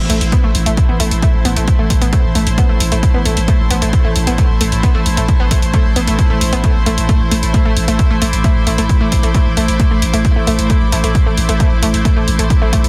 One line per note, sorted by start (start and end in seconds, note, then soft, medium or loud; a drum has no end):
0.00 12.89 A2 medium
0.00 12.89 A3 medium
0.00 12.89 E4 medium
0.00 12.89 C5 medium
0.10 0.21 A1 loud
0.10 0.18 A3 medium
0.10 open hi-hat loud
0.21 0.32 A1 medium
0.21 closed hi-hat medium
0.32 0.36 B3 medium
0.32 kick loud
0.32 closed hi-hat medium
0.44 0.54 A1 medium
0.44 0.52 A3 medium
0.55 0.66 A1 loud
0.55 open hi-hat loud
0.66 0.77 A1 medium
0.66 0.75 A3 medium
0.66 closed hi-hat medium
0.77 kick loud
0.77 closed hi-hat medium
0.89 0.99 A1 medium
0.89 0.92 B3 medium
1.00 1.11 A1 loud
1.00 1.08 A3 medium
1.00 8.26 A5 medium
1.00 open hi-hat loud
1.11 1.22 A1 medium
1.11 closed hi-hat medium
1.22 1.31 A3 medium
1.22 kick loud
1.22 closed hi-hat medium
1.34 1.44 A1 medium
1.45 1.56 A1 loud
1.45 1.48 B3 medium
1.45 open hi-hat loud
1.56 1.67 A1 medium
1.56 1.65 A3 medium
1.56 closed hi-hat medium
1.68 kick loud
1.68 closed hi-hat medium
1.79 1.90 A1 medium
1.79 1.87 A3 medium
1.90 2.01 A1 loud
1.90 kick medium
1.90 open hi-hat loud
2.02 2.13 A1 medium
2.02 2.05 B3 medium
2.02 closed hi-hat medium
2.13 2.21 A3 medium
2.13 kick loud
2.13 closed hi-hat medium
2.24 2.35 A1 medium
2.35 2.46 A1 loud
2.35 2.44 A3 medium
2.35 open hi-hat loud
2.47 2.58 A1 medium
2.47 closed hi-hat medium
2.58 2.61 B3 medium
2.58 kick loud
2.58 closed hi-hat medium
2.69 2.80 A1 medium
2.69 2.78 A3 medium
2.80 2.91 A1 loud
2.80 open hi-hat loud
2.92 3.03 A1 medium
2.92 3.00 A3 medium
2.92 closed hi-hat medium
3.03 kick loud
3.03 closed hi-hat medium
3.14 3.25 A1 medium
3.14 3.18 B3 medium
3.25 3.36 A1 loud
3.25 3.34 A3 medium
3.25 open hi-hat loud
3.37 3.48 A1 medium
3.37 closed hi-hat medium
3.48 3.57 A3 medium
3.48 kick loud
3.48 closed hi-hat medium
3.59 3.70 A1 medium
3.71 3.81 A1 loud
3.71 3.74 B3 medium
3.71 open hi-hat loud
3.82 3.93 A1 medium
3.82 3.90 A3 medium
3.82 closed hi-hat medium
3.93 kick loud
3.93 closed hi-hat medium
4.04 4.15 A1 medium
4.04 4.13 A3 medium
4.16 4.27 A1 loud
4.16 open hi-hat loud
4.27 4.38 A1 medium
4.27 4.30 B3 medium
4.27 closed hi-hat medium
4.38 4.47 A3 medium
4.38 kick loud
4.38 closed hi-hat medium
4.50 4.60 A1 medium
4.61 4.72 A1 loud
4.61 4.69 A3 medium
4.61 open hi-hat loud
4.72 4.83 A1 medium
4.72 closed hi-hat medium
4.83 4.87 B3 medium
4.83 kick loud
4.83 closed hi-hat medium
4.95 5.05 A1 medium
4.95 5.03 A3 medium
5.06 5.17 A1 loud
5.06 open hi-hat loud
5.17 5.28 A1 medium
5.17 5.26 A3 medium
5.17 closed hi-hat medium
5.28 kick loud
5.28 closed hi-hat medium
5.40 5.50 A1 medium
5.40 5.43 B3 medium
5.51 5.62 A1 loud
5.51 5.60 A3 medium
5.51 kick medium
5.51 open hi-hat loud
5.62 5.73 A1 medium
5.62 closed hi-hat medium
5.74 5.82 A3 medium
5.74 kick loud
5.74 closed hi-hat medium
5.85 5.95 A1 medium
5.96 6.07 A1 loud
5.96 6.00 B3 medium
5.96 open hi-hat loud
6.07 6.18 A1 medium
6.07 6.16 A3 medium
6.07 closed hi-hat medium
6.19 kick loud
6.19 closed hi-hat medium
6.30 6.41 A1 medium
6.30 6.38 A3 medium
6.41 6.52 A1 loud
6.41 open hi-hat loud
6.53 6.64 A1 medium
6.53 6.56 B3 medium
6.53 closed hi-hat medium
6.64 6.72 A3 medium
6.64 kick loud
6.64 closed hi-hat medium
6.75 6.86 A1 medium
6.86 6.97 A1 loud
6.86 6.95 A3 medium
6.86 open hi-hat loud
6.98 7.09 A1 medium
6.98 closed hi-hat medium
7.09 7.17 A3 medium
7.09 kick loud
7.09 closed hi-hat medium
7.20 7.31 A1 medium
7.31 7.42 A1 loud
7.31 7.40 A3 medium
7.31 open hi-hat loud
7.43 7.54 A1 medium
7.43 closed hi-hat medium
7.54 7.60 A3 medium
7.54 kick loud
7.54 closed hi-hat medium
7.65 7.76 A1 medium
7.65 7.74 A3 medium
7.77 7.87 A1 loud
7.77 open hi-hat loud
7.88 7.99 A1 medium
7.88 7.96 A3 medium
7.88 closed hi-hat medium
7.99 kick loud
7.99 closed hi-hat medium
8.11 8.21 A1 medium
8.11 8.16 A3 medium
8.22 8.32 A1 loud
8.22 8.30 A3 medium
8.22 12.89 D6 medium
8.22 open hi-hat loud
8.33 8.44 A1 medium
8.33 closed hi-hat medium
8.44 8.53 A3 medium
8.44 kick loud
8.44 closed hi-hat medium
8.56 8.66 A1 medium
8.67 8.78 A1 loud
8.67 8.72 A3 medium
8.67 open hi-hat loud
8.78 8.89 A1 medium
8.78 8.87 A3 medium
8.78 closed hi-hat medium
8.89 kick loud
8.89 closed hi-hat medium
9.01 9.11 A1 medium
9.01 9.09 A3 medium
9.12 9.23 A1 loud
9.12 kick medium
9.12 open hi-hat loud
9.23 9.34 A1 medium
9.23 9.29 A3 medium
9.23 closed hi-hat medium
9.34 9.43 A3 medium
9.34 kick loud
9.34 closed hi-hat medium
9.46 9.56 A1 medium
9.57 9.68 A1 loud
9.57 9.66 A3 medium
9.57 open hi-hat loud
9.68 9.79 A1 medium
9.68 closed hi-hat medium
9.80 9.85 A3 medium
9.80 kick loud
9.80 closed hi-hat medium
9.91 10.02 A1 medium
9.91 9.99 A3 medium
10.02 10.13 A1 loud
10.02 open hi-hat loud
10.14 10.25 A1 medium
10.14 10.22 A3 medium
10.14 closed hi-hat medium
10.25 kick loud
10.25 closed hi-hat medium
10.36 10.47 A1 medium
10.36 10.42 A3 medium
10.47 10.58 A1 loud
10.47 10.56 A3 medium
10.47 open hi-hat loud
10.59 10.70 A1 medium
10.59 closed hi-hat medium
10.70 10.78 A3 medium
10.70 kick loud
10.70 closed hi-hat medium
10.81 10.92 A1 medium
10.92 11.03 A1 loud
10.92 10.98 A3 medium
10.92 open hi-hat loud
11.04 11.15 A1 medium
11.04 11.12 A3 medium
11.04 closed hi-hat medium
11.15 kick loud
11.15 closed hi-hat medium
11.26 11.37 A1 medium
11.26 11.35 A3 medium
11.38 11.48 A1 loud
11.38 open hi-hat loud
11.49 11.60 A1 medium
11.49 11.54 A3 medium
11.49 closed hi-hat medium
11.60 11.69 A3 medium
11.60 kick loud
11.60 closed hi-hat medium
11.71 11.82 A1 medium
11.83 11.93 A1 loud
11.83 11.91 A3 medium
11.83 open hi-hat loud
11.94 12.05 A1 medium
11.94 closed hi-hat medium
12.05 12.11 A3 medium
12.05 kick loud
12.05 closed hi-hat medium
12.16 12.27 A1 medium
12.16 12.25 A3 medium
12.28 12.39 A1 loud
12.28 open hi-hat loud
12.39 12.50 A1 medium
12.39 12.47 A3 medium
12.39 closed hi-hat medium
12.50 kick loud
12.50 closed hi-hat medium
12.62 12.72 A1 medium
12.62 12.67 A3 medium
12.73 12.84 A1 loud
12.73 12.81 A3 medium
12.73 kick medium
12.73 open hi-hat loud
12.84 12.89 A1 medium
12.84 closed hi-hat medium